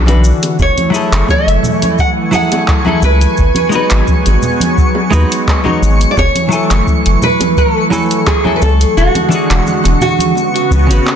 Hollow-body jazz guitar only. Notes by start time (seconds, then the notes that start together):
0.06 E3 D4 F#4 B4
0.90 F#3 E4 G#4
0.96 A4
2.31 F#3 E4 G#4 A4
2.85 F#3 E4 G#4 A4
3.69 G#3 D#4
3.74 F#4 B4
5.10 G#3 D#4 F#4 B4
5.64 G#3 D#4 F#4 C#5
6.49 F#3 E4 G#5
6.54 A4
7.90 F#3 E4 A4 G#5
8.44 F#3 E4 A4 G#5
9.29 E3 D4
9.33 F#4 G#4
10.87 C#3 C#4 F#4
10.93 B4